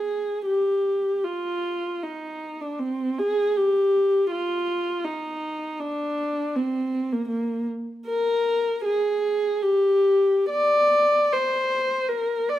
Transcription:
0.00 0.45 G#4 soft
0.45 1.21 G4 soft
1.23 2.00 F4 soft
2.03 2.59 D#4 soft
2.61 2.79 D4 soft
2.79 3.18 C4 soft
3.18 3.56 G#4 medium
3.56 4.31 G4 soft
4.31 5.03 F4 medium
5.04 5.78 D#4 soft
5.80 6.55 D4 medium
6.55 7.11 C4 soft
7.12 7.27 A#3 soft
7.28 7.66 A#3 soft
8.07 8.80 A#4 medium
8.85 9.61 G#4 medium
9.62 10.52 G4 medium
10.50 11.30 D5 medium
11.32 12.10 C5 medium
12.09 12.48 A#4 medium
12.49 12.59 D5 medium

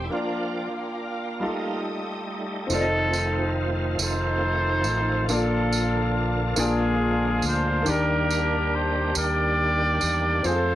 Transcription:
0.00 0.10 D5 medium
0.00 1.38 G5 medium
0.00 1.38 D6 medium
0.04 0.11 E4 soft
0.10 0.69 F3 soft
0.10 1.40 A#3 soft
0.10 1.81 A#3 soft
0.10 1.41 D4 soft
0.10 0.70 D4 soft
0.10 1.40 F4 medium
0.10 1.41 F4 soft
0.10 1.81 F4 medium
0.10 1.40 D5 soft
0.10 1.42 D5 medium
0.10 2.68 F5 medium
1.39 2.70 G3 medium
1.39 2.67 G3 soft
1.39 2.67 D#4 medium
1.39 2.69 F4 medium
1.39 2.70 A4 medium
1.39 2.70 G5 soft
1.39 2.70 A5 medium
1.39 2.70 D#6 medium
1.44 2.68 A3 soft
1.44 2.68 D#4 soft
2.67 3.95 F1 loud
2.67 5.23 C4 medium
2.67 5.24 D#4 medium
2.67 5.25 F4 medium
2.67 tambourine soft
2.72 5.27 D#3 medium
2.72 7.85 F3 medium
2.72 5.27 A3 medium
2.72 5.27 C4 medium
2.72 3.97 C4 medium
2.72 3.98 D#4 medium
2.72 7.84 F4 medium
2.72 5.26 A4 medium
2.72 3.54 A4 loud
2.72 2.78 D5 medium
2.81 5.30 D#5 medium
3.13 tambourine medium
3.99 4.86 F1 medium
3.99 5.26 D#4 medium
3.99 5.26 A4 medium
3.99 5.26 C5 loud
3.99 tambourine medium
4.84 5.26 A1 medium
4.84 tambourine soft
5.27 6.54 A#1 loud
5.27 6.55 A#2 medium
5.27 7.84 D3 medium
5.27 6.55 A#3 medium
5.27 6.57 A#3 medium
5.27 6.56 D4 medium
5.27 6.56 F4 medium
5.27 6.56 A4 medium
5.27 6.59 A4 medium
5.27 6.16 A4 medium
5.27 tambourine medium
5.32 6.55 D4 medium
5.32 6.56 F4 medium
5.32 6.58 D5 medium
5.73 tambourine medium
6.56 7.40 A#1 loud
6.56 7.83 A#2 medium
6.56 7.86 G#3 medium
6.56 7.81 A#3 medium
6.56 7.85 A#3 medium
6.56 7.83 D4 medium
6.56 7.87 F4 medium
6.56 7.87 G#4 medium
6.56 7.87 D5 medium
6.56 tambourine medium
6.60 7.84 D4 medium
6.60 7.84 F4 medium
6.60 7.42 G#4 medium
7.42 7.83 D2 medium
7.42 tambourine medium
7.47 7.89 C5 loud
7.83 9.11 D#3 medium
7.83 10.42 D#3 medium
7.83 10.39 A#3 medium
7.83 10.42 A#3 medium
7.83 10.40 D4 medium
7.83 10.42 D4 medium
7.83 10.42 G4 medium
7.83 tambourine medium
7.87 9.12 D#2 loud
7.87 10.43 G3 medium
7.87 9.13 D4 medium
7.87 10.41 G4 medium
7.87 9.13 G4 medium
7.87 8.75 A#4 loud
7.87 10.42 D5 medium
8.30 tambourine medium
8.75 9.17 C5 medium
9.15 9.98 D#2 medium
9.15 10.42 G4 medium
9.15 10.41 A#4 medium
9.15 10.42 D5 loud
9.15 tambourine medium
10.01 10.42 E2 medium
10.01 tambourine medium
10.43 10.75 F2 medium
10.43 10.75 A3 medium
10.43 10.75 C4 medium
10.43 10.75 F4 medium
10.43 10.53 G#4 soft
10.43 10.75 A4 medium
10.43 10.75 C5 loud
10.43 tambourine medium
10.53 10.75 A4 medium

